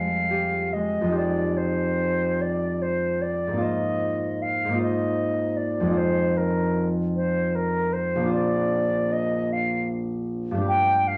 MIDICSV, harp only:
0, 0, Header, 1, 2, 480
1, 0, Start_track
1, 0, Tempo, 887574
1, 630, Time_signature, 6, 3, 24, 8
1, 630, Tempo, 818554
1, 2070, Tempo, 783290
1, 6699, End_track
2, 0, Start_track
2, 0, Title_t, "Harp"
2, 0, Program_c, 0, 46
2, 0, Note_on_c, 0, 41, 28
2, 0, Note_on_c, 0, 55, 17
2, 0, Note_on_c, 0, 56, 22
2, 0, Note_on_c, 0, 68, 22
2, 0, Note_on_c, 0, 72, 22
2, 78, Note_off_c, 0, 55, 0
2, 165, Note_on_c, 0, 67, 22
2, 402, Note_off_c, 0, 56, 0
2, 409, Note_on_c, 0, 56, 20
2, 539, Note_off_c, 0, 41, 0
2, 546, Note_on_c, 0, 41, 27
2, 559, Note_off_c, 0, 56, 0
2, 566, Note_on_c, 0, 56, 24
2, 588, Note_on_c, 0, 63, 25
2, 597, Note_off_c, 0, 67, 0
2, 604, Note_on_c, 0, 67, 22
2, 615, Note_off_c, 0, 72, 0
2, 621, Note_on_c, 0, 72, 23
2, 1014, Note_off_c, 0, 68, 0
2, 1982, Note_on_c, 0, 44, 27
2, 2007, Note_on_c, 0, 58, 26
2, 2014, Note_off_c, 0, 63, 0
2, 2021, Note_on_c, 0, 63, 25
2, 2041, Note_on_c, 0, 65, 24
2, 2043, Note_off_c, 0, 41, 0
2, 2055, Note_off_c, 0, 72, 0
2, 2062, Note_on_c, 0, 72, 24
2, 2075, Note_off_c, 0, 67, 0
2, 2692, Note_off_c, 0, 44, 0
2, 2700, Note_on_c, 0, 44, 30
2, 2717, Note_off_c, 0, 58, 0
2, 2724, Note_on_c, 0, 58, 27
2, 2735, Note_off_c, 0, 63, 0
2, 2743, Note_on_c, 0, 63, 26
2, 2753, Note_off_c, 0, 65, 0
2, 2760, Note_on_c, 0, 65, 25
2, 2778, Note_off_c, 0, 72, 0
2, 2785, Note_on_c, 0, 72, 25
2, 2882, Note_off_c, 0, 56, 0
2, 3405, Note_on_c, 0, 41, 30
2, 3423, Note_on_c, 0, 56, 26
2, 3435, Note_off_c, 0, 63, 0
2, 3442, Note_on_c, 0, 63, 25
2, 3458, Note_off_c, 0, 65, 0
2, 3465, Note_on_c, 0, 65, 24
2, 3479, Note_off_c, 0, 44, 0
2, 3481, Note_off_c, 0, 72, 0
2, 3488, Note_on_c, 0, 72, 25
2, 3491, Note_off_c, 0, 58, 0
2, 4849, Note_on_c, 0, 34, 37
2, 4871, Note_on_c, 0, 58, 30
2, 4889, Note_on_c, 0, 62, 29
2, 4905, Note_off_c, 0, 65, 0
2, 4912, Note_on_c, 0, 65, 27
2, 4919, Note_off_c, 0, 41, 0
2, 4923, Note_off_c, 0, 72, 0
2, 4928, Note_off_c, 0, 56, 0
2, 4930, Note_on_c, 0, 72, 28
2, 4937, Note_off_c, 0, 63, 0
2, 6292, Note_on_c, 0, 43, 37
2, 6312, Note_on_c, 0, 57, 31
2, 6322, Note_off_c, 0, 62, 0
2, 6330, Note_on_c, 0, 62, 34
2, 6356, Note_on_c, 0, 67, 32
2, 6360, Note_off_c, 0, 34, 0
2, 6371, Note_off_c, 0, 58, 0
2, 6377, Note_on_c, 0, 71, 30
2, 6392, Note_off_c, 0, 65, 0
2, 6401, Note_off_c, 0, 72, 0
2, 6699, Note_off_c, 0, 43, 0
2, 6699, Note_off_c, 0, 57, 0
2, 6699, Note_off_c, 0, 62, 0
2, 6699, Note_off_c, 0, 67, 0
2, 6699, Note_off_c, 0, 71, 0
2, 6699, End_track
0, 0, End_of_file